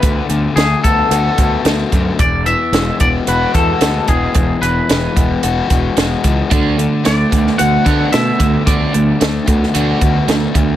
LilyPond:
<<
  \new Staff \with { instrumentName = "Clean electric guitar" } { \time 4/4 \key d \lydian \tempo 4 = 111 b'8 r8 gis'8 a'2 r8 | d''8 e''4 d''8 b'8 a'4 gis'8~ | gis'8 b'2 r4. | r4 d''4 fis''4 e''4 |
d''4. r2 r8 | }
  \new Staff \with { instrumentName = "Overdriven electric guitar" } { \time 4/4 \key d \lydian <d a b fis'>8 d8 a8 b8 fis'8 b8 a8 d8 | e,8 e8 gis8 b8 fis'8 b8 gis8 e8 | e,8 e8 gis8 b8 fis'8 b8 gis8 e8 | d8 d8 a8 b8 fis'8 b8 a8 d8 |
d8 d8 a8 b8 fis'8 b8 a8 d8 | }
  \new Staff \with { instrumentName = "Overdriven electric guitar" } { \time 4/4 \key d \lydian r1 | r1 | r1 | <d a d'>8 <d a>8 <d a>8 <d a>8 <d a>8 <d a d'>8 <d a>8 <d a>8 |
<d a d'>8 <d a>8 <d a>8 <d a>8 <d a d'>8 <d a>8 <d a>8 <d a>8 | }
  \new Staff \with { instrumentName = "Fingered electric bass" } { \clef bass \time 4/4 \key d \lydian d,8 d,8 d,8 d,8 d,8 d,8 d,8 fis,8 | e,,4 e,,8 e,,8 e,,8 e,8 d,8 e,,8 | e,,8 e,,8 e,,8 e,,8 e,,8 e,,8 e,,8 cis,8 | d,4 d,8 d,8 d,8 d8 b,8 d,8 |
d,8 d,8 d,8 d,8 d,8 d,8 d,8 d,8 | }
  \new DrumStaff \with { instrumentName = "Drums" } \drummode { \time 4/4 <hh bd>8 hh8 <hh sn>8 <hh bd>8 hh8 <hh bd>8 <hh sn>8 <hh bd>8 | <hh bd>8 hh8 <hh sn>8 <hh bd>8 hh8 <hh bd>8 <hh sn>8 <hh bd>8 | <hh bd>8 hh8 <hh sn>8 <hh bd>8 hh8 <hh bd>8 <hh sn>8 <hh bd>8 | <hh bd>8 hh8 <hh sn>8 <hh bd>16 sn16 hh8 <hh bd>8 <hh sn>8 <hh bd>8 |
<hh bd>8 hh8 <hh sn>8 <hh bd>16 sn16 hh8 <hh bd>8 <hh sn>8 <hh bd>8 | }
>>